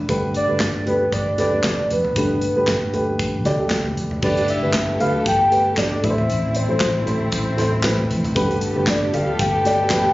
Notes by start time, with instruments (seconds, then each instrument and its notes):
Already playing: upright piano A2 E3 A3 B3 C4 D4 B4
0.09 fingered electric bass G1, upright piano G2 D3 A3 G4 B4, kick, closed hi-hat
0.34 soft synth lead D5, closed hi-hat
0.48 fingered electric bass G1, upright piano A3 G4 B4
0.60 fingered electric bass G1, kick, snare, clap, closed hi-hat
0.86 upright piano A3 G4 B4, soft synth lead B4, closed hi-hat, floor tom
1.12 fingered electric bass G1, soft synth lead D5, kick, closed hi-hat
1.38 upright piano A3 G4 B4, soft synth lead D5, snare, closed hi-hat, floor tom
1.52 upright piano A3 G4 B4
1.63 fingered electric bass F1, kick, snare, clap, closed hi-hat
1.79 floor tom
1.90 fingered electric bass F1, soft synth lead B4, closed hi-hat
2.05 floor tom
2.16 fingered electric bass G1, upright piano G2 D3 A3 G4 B4, kick, closed hi-hat
2.41 closed hi-hat
2.56 fingered electric bass G1, upright piano A3 G4 B4
2.67 fingered electric bass G1, kick, snare, clap, closed hi-hat
2.93 upright piano A3 G4 B4, closed hi-hat, floor tom
3.19 kick, closed hi-hat
3.45 fingered electric bass D2, upright piano A3 G4 D5, snare, closed hi-hat, floor tom
3.59 upright piano A3 G4 A4
3.70 kick, snare, clap, closed hi-hat
3.86 floor tom
3.97 fingered electric bass F1, closed hi-hat
4.11 floor tom
4.22 fingered electric bass G1, upright piano G2 D3 A3 G4 B4, string section B3 G4 A4, soft synth lead D5, kick, crash
4.37 closed hi-hat
4.48 soft synth lead E5, closed hi-hat
4.62 fingered electric bass G1, upright piano A3 G4 B4
4.73 kick, snare, clap, closed hi-hat
5.00 fingered electric bass D2, upright piano A3 G4 B4, soft synth lead F5, closed hi-hat, floor tom
5.26 fingered electric bass G1, soft synth lead G5, kick, closed hi-hat
5.51 upright piano A3 G4 B4, closed hi-hat
5.77 upright piano A3 G4 D5, soft synth lead D5, kick, snare, clap, closed hi-hat
5.92 floor tom
6.02 fingered electric bass A1, upright piano A2 E3 A3 E4 B4, string section A3 C4 E4, soft synth lead E5, kick, closed hi-hat
6.10 upright piano C5
6.18 floor tom
6.30 fingered electric bass A1, closed hi-hat
6.55 soft synth lead C5, closed hi-hat
6.69 fingered electric bass A1, upright piano A3 E4 C5
6.80 kick, snare, clap, closed hi-hat
7.06 fingered electric bass A1, upright piano A3 E4 C5, closed hi-hat, floor tom
7.32 fingered electric bass A1, soft synth lead C5, kick, closed hi-hat
7.57 upright piano A3 E4 C5, snare, closed hi-hat, floor tom
7.83 upright piano A3 E4 B4, kick, snare, clap, closed hi-hat
7.99 floor tom
8.11 fingered electric bass F1, closed hi-hat
8.24 closed hi-hat, floor tom
8.35 fingered electric bass G1, upright piano G2 D3 A3 G4 B4, string section B3 G4 A4, kick, closed hi-hat
8.51 closed hi-hat
8.61 closed hi-hat
8.76 fingered electric bass G1, upright piano A3 G4 B4
8.87 soft synth lead D5, kick, snare, clap, closed hi-hat
9.13 fingered electric bass D2, upright piano A3 G4 A4, soft synth lead F5, closed hi-hat, floor tom
9.39 fingered electric bass G1, soft synth lead G5, kick, closed hi-hat
9.65 upright piano A3 G4 D5, snare, closed hi-hat
9.90 upright piano A3 G4 B4, kick, snare, clap, closed hi-hat
10.05 floor tom